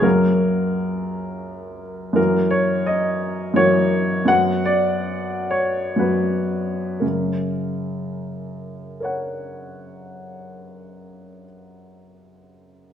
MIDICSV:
0, 0, Header, 1, 2, 480
1, 0, Start_track
1, 0, Key_signature, 6, "major"
1, 0, Tempo, 705882
1, 29, Time_signature, 3, 2, 24, 8
1, 2427, Tempo, 721154
1, 2907, Tempo, 786370
1, 3387, Tempo, 920245
1, 3867, Tempo, 998336
1, 7200, End_track
2, 0, Start_track
2, 0, Title_t, "Grand piano"
2, 0, Program_c, 0, 0
2, 0, Control_c, 0, 64, 127
2, 13, Note_on_c, 0, 42, 46
2, 18, Note_on_c, 0, 54, 31
2, 19, Note_on_c, 0, 70, 60
2, 23, Note_on_c, 0, 58, 31
2, 26, Note_on_c, 0, 66, 33
2, 41, Control_c, 0, 64, 0
2, 145, Control_c, 0, 64, 127
2, 1225, Note_off_c, 0, 70, 0
2, 1439, Note_off_c, 0, 42, 0
2, 1444, Note_off_c, 0, 54, 0
2, 1446, Note_off_c, 0, 58, 0
2, 1448, Note_off_c, 0, 66, 0
2, 1449, Note_on_c, 0, 42, 43
2, 1459, Note_on_c, 0, 52, 36
2, 1465, Note_on_c, 0, 58, 33
2, 1468, Note_on_c, 0, 70, 56
2, 1472, Note_on_c, 0, 66, 36
2, 1488, Control_c, 0, 64, 0
2, 1595, Control_c, 0, 64, 127
2, 1704, Note_on_c, 0, 73, 60
2, 1713, Note_off_c, 0, 70, 0
2, 1947, Note_on_c, 0, 75, 61
2, 1949, Note_off_c, 0, 73, 0
2, 2387, Note_off_c, 0, 42, 0
2, 2392, Note_off_c, 0, 52, 0
2, 2395, Note_off_c, 0, 58, 0
2, 2398, Note_off_c, 0, 66, 0
2, 2405, Note_on_c, 0, 42, 51
2, 2411, Note_on_c, 0, 52, 37
2, 2422, Note_on_c, 0, 58, 37
2, 2422, Note_on_c, 0, 73, 75
2, 2423, Note_off_c, 0, 75, 0
2, 2429, Note_on_c, 0, 66, 40
2, 2873, Note_off_c, 0, 42, 0
2, 2883, Note_on_c, 0, 42, 48
2, 2884, Note_off_c, 0, 52, 0
2, 2889, Note_on_c, 0, 54, 35
2, 2890, Note_off_c, 0, 58, 0
2, 2894, Note_off_c, 0, 66, 0
2, 2898, Note_on_c, 0, 59, 35
2, 2899, Note_on_c, 0, 78, 75
2, 2904, Note_off_c, 0, 73, 0
2, 2904, Note_on_c, 0, 66, 36
2, 2918, Control_c, 0, 64, 0
2, 3024, Control_c, 0, 64, 127
2, 3129, Note_on_c, 0, 74, 66
2, 3135, Note_off_c, 0, 78, 0
2, 3610, Note_on_c, 0, 73, 60
2, 3615, Note_off_c, 0, 74, 0
2, 3837, Note_off_c, 0, 42, 0
2, 3839, Note_off_c, 0, 54, 0
2, 3843, Note_off_c, 0, 59, 0
2, 3845, Note_off_c, 0, 66, 0
2, 3849, Note_on_c, 0, 42, 38
2, 3855, Note_on_c, 0, 54, 28
2, 3862, Note_on_c, 0, 59, 32
2, 3863, Note_off_c, 0, 73, 0
2, 3863, Note_on_c, 0, 71, 50
2, 3868, Note_on_c, 0, 66, 32
2, 4333, Note_off_c, 0, 42, 0
2, 4336, Note_off_c, 0, 54, 0
2, 4340, Note_off_c, 0, 59, 0
2, 4342, Note_off_c, 0, 66, 0
2, 4349, Note_on_c, 0, 70, 34
2, 4355, Note_off_c, 0, 71, 0
2, 4357, Note_on_c, 0, 42, 32
2, 4357, Note_on_c, 0, 49, 29
2, 4369, Control_c, 0, 64, 0
2, 4495, Control_c, 0, 64, 127
2, 5305, Note_off_c, 0, 70, 0
2, 5313, Note_on_c, 0, 70, 28
2, 5323, Note_on_c, 0, 73, 29
2, 5333, Note_on_c, 0, 78, 28
2, 6484, Note_off_c, 0, 42, 0
2, 6484, Note_off_c, 0, 49, 0
2, 7200, Note_off_c, 0, 70, 0
2, 7200, Note_off_c, 0, 73, 0
2, 7200, Note_off_c, 0, 78, 0
2, 7200, End_track
0, 0, End_of_file